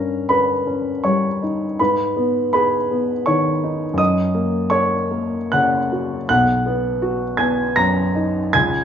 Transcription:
0.00 1.75 G2 soft
0.00 0.52 C#4 soft
0.00 0.26 A#4 soft
0.00 0.29 A#5 medium
0.29 0.90 A#4 soft
0.29 1.01 B4 soft
0.29 1.04 B5 medium
0.67 1.27 C#4 soft
1.04 1.64 G3 soft
1.04 1.39 C#5 soft
1.04 1.42 C#6 medium
1.43 1.79 D#4 soft
1.79 3.95 G#2 soft
1.79 2.49 B4 soft
1.79 2.51 B5 medium
2.16 2.74 B3 soft
2.53 3.12 G#4 soft
2.53 3.23 B4 soft
2.53 3.26 B5 medium
2.91 3.49 B3 soft
3.26 3.85 D#3 soft
3.26 3.95 C#5 soft
3.26 3.99 C#6 medium
3.64 3.99 D#4 soft
3.94 6.23 F#2 soft
3.98 4.67 D#5 medium
3.98 4.71 D#6 medium
4.35 4.95 A#3 soft
4.70 5.36 A#4 soft
4.70 5.49 C#5 soft
4.70 5.52 C#6 medium
5.11 5.77 A#3 soft
5.52 6.15 C#3 soft
5.52 6.25 F#5 soft
5.52 6.27 F#6 medium
5.92 6.29 F#4 soft
6.29 8.50 B1 soft
6.29 7.35 F#5 medium
6.29 7.38 F#6 medium
6.66 7.24 B3 soft
7.02 7.61 F#4 soft
7.37 7.99 B3 soft
7.37 7.73 G#5 medium
7.37 7.75 G#6 medium
7.76 8.39 F#2 soft
7.76 8.50 A#5 medium
7.76 8.54 A#6 medium
8.15 8.54 D#4 soft
8.53 8.84 C#2 soft
8.53 8.84 G#5 medium
8.53 8.84 G#6 medium

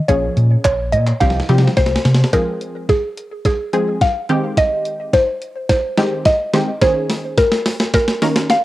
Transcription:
0.00 0.10 D#5 medium
0.08 0.27 A#1 loud
0.08 0.76 F3 medium
0.08 0.76 A#3 medium
0.08 0.76 C#4 medium
0.08 0.76 G#4 medium
0.08 0.63 C#5 medium
0.08 kick loud
0.08 closed hi-hat medium
0.37 0.55 A#2 loud
0.37 closed hi-hat medium
0.65 0.94 A#1 medium
0.65 0.94 C#5 medium
0.65 kick loud
0.65 clap loud
0.65 closed hi-hat medium
0.92 1.11 A#2 loud
0.92 1.05 D#5 medium
0.92 closed hi-hat medium
1.07 clap medium
1.20 1.39 C2 loud
1.20 1.43 F3 medium
1.20 1.43 G3 medium
1.20 1.43 C4 medium
1.20 1.44 G4 medium
1.20 1.73 F5 medium
1.20 kick loud
1.20 snare medium
1.20 closed hi-hat medium
1.30 snare soft
1.40 snare medium
1.49 1.67 C3 medium
1.49 1.99 F3 medium
1.49 2.00 G3 medium
1.49 2.00 C4 medium
1.49 2.00 G4 medium
1.49 snare medium
1.49 closed hi-hat medium
1.58 snare medium
1.67 snare medium
1.77 1.95 C2 loud
1.77 2.35 C5 loud
1.77 kick loud
1.77 snare medium
1.77 closed hi-hat medium
1.86 snare medium
1.96 snare medium
2.05 2.23 C3 medium
2.05 snare medium
2.05 closed hi-hat medium
2.15 snare medium
2.24 snare medium
2.33 3.00 F3 medium
2.33 3.01 G#3 medium
2.33 3.01 C4 medium
2.33 3.01 G#4 medium
2.33 2.91 A#4 medium
2.33 kick loud
2.33 snare soft
2.33 closed hi-hat medium
2.61 closed hi-hat medium
2.89 3.44 G#4 medium
2.89 kick loud
2.89 snare medium
2.89 closed hi-hat medium
3.17 closed hi-hat medium
3.45 4.03 G#4 loud
3.45 kick loud
3.45 snare medium
3.45 closed hi-hat medium
3.73 4.07 F3 medium
3.73 4.07 G#3 medium
3.73 4.07 C4 medium
3.73 4.07 G#4 medium
3.73 closed hi-hat medium
4.01 4.59 F5 loud
4.01 kick loud
4.01 snare medium
4.01 closed hi-hat medium
4.29 5.19 D#3 medium
4.29 5.19 G#3 medium
4.29 5.19 C4 medium
4.29 5.19 G4 medium
4.29 closed hi-hat medium
4.57 5.15 D#5 loud
4.57 kick loud
4.57 snare medium
4.57 closed hi-hat medium
4.85 closed hi-hat medium
5.13 5.68 C5 loud
5.13 kick loud
5.13 snare medium
5.13 closed hi-hat medium
5.42 closed hi-hat medium
5.69 6.27 C5 loud
5.69 kick loud
5.69 snare medium
5.69 closed hi-hat medium
5.97 6.31 D#3 medium
5.97 6.31 G#3 medium
5.97 6.31 C4 medium
5.97 6.32 G4 medium
5.97 snare medium
5.97 closed hi-hat medium
6.25 6.78 D#5 loud
6.25 kick loud
6.25 snare medium
6.25 closed hi-hat medium
6.53 6.70 D#3 medium
6.53 6.70 G#3 medium
6.53 6.71 C4 medium
6.53 6.71 G4 medium
6.53 snare medium
6.53 closed hi-hat medium
6.82 7.49 D#3 medium
6.82 7.49 A#3 medium
6.82 7.49 C#4 medium
6.82 7.49 G#4 medium
6.82 7.40 C5 loud
6.82 kick loud
6.82 snare medium
6.82 closed hi-hat medium
7.10 snare medium
7.10 open hi-hat medium
7.38 7.93 A#4 loud
7.38 kick loud
7.38 snare loud
7.38 closed hi-hat medium
7.52 snare loud
7.66 snare loud
7.66 open hi-hat medium
7.80 snare loud
7.94 8.52 A#4 loud
7.94 kick loud
7.94 snare loud
7.94 closed hi-hat medium
8.08 snare loud
8.22 8.56 D#3 medium
8.22 8.56 A#3 medium
8.22 8.56 C#4 medium
8.22 8.56 A#4 medium
8.22 snare loud
8.22 open hi-hat medium
8.36 snare loud
8.50 8.64 F5 loud
8.50 snare loud
8.50 closed hi-hat medium

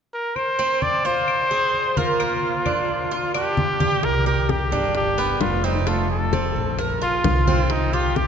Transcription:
0.14 0.38 A#4 medium
0.36 0.84 C5 medium
0.36 high conga soft
0.36 claves medium
0.59 1.03 C4 medium
0.59 high conga soft
0.82 1.08 D5 medium
0.82 high conga medium
1.05 1.49 F4 medium
1.05 1.99 C5 loud
1.05 high conga soft
1.28 high conga soft
1.28 claves medium
1.51 1.95 G#4 medium
1.51 high conga soft
1.74 high conga soft
1.97 3.35 F4 medium
1.97 2.19 A#4 medium
1.97 high conga medium
2.20 2.64 A#3 medium
2.20 high conga soft
2.20 claves medium
2.43 high conga soft
2.65 3.10 D4 medium
2.65 high conga medium
2.65 claves medium
2.89 high conga soft
3.11 3.34 F4 medium
3.11 high conga soft
3.34 3.79 D4 medium
3.34 4.06 G4 medium
3.34 high conga soft
3.34 claves medium
3.57 high conga medium
3.80 4.03 G4 medium
3.80 high conga medium
4.03 4.68 C2 medium
4.03 4.27 A#4 loud
4.03 high bongo medium
4.03 high conga soft
4.26 4.71 G4 medium
4.26 4.52 A#4 medium
4.26 high conga soft
4.49 4.96 G4 medium
4.49 high bongo medium
4.49 high conga medium
4.72 5.37 G1 medium
4.72 5.17 D4 medium
4.72 high conga soft
4.95 5.43 G4 medium
4.95 high bongo medium
4.95 high conga soft
5.18 5.63 B3 medium
5.18 high conga soft
5.41 6.49 F1 medium
5.41 5.66 F4 medium
5.41 high bongo medium
5.41 low bongo medium
5.41 high conga soft
5.64 5.86 C4 medium
5.64 5.89 D#4 medium
5.87 6.31 A3 medium
5.87 6.10 F4 medium
5.87 high bongo medium
5.87 high conga soft
6.10 6.75 A4 medium
6.10 high conga soft
6.33 6.77 C4 medium
6.33 high bongo medium
6.33 high conga medium
6.55 7.20 A#1 medium
6.55 high bongo soft
6.55 high conga soft
6.79 7.01 A#4 medium
6.79 high bongo medium
6.79 high conga soft
7.02 7.46 F4 medium
7.02 7.72 F4 medium
7.02 high bongo soft
7.02 high conga soft
7.24 8.27 C2 medium
7.24 high bongo medium
7.24 low bongo medium
7.24 high conga medium
7.47 7.92 C4 medium
7.47 high bongo soft
7.47 high conga medium
7.70 7.95 D#4 medium
7.70 high bongo medium
7.70 high conga soft
7.93 8.18 F4 medium
7.93 8.27 G4 medium
7.93 high conga soft
8.16 8.27 G4 medium
8.16 high bongo medium
8.16 high conga medium

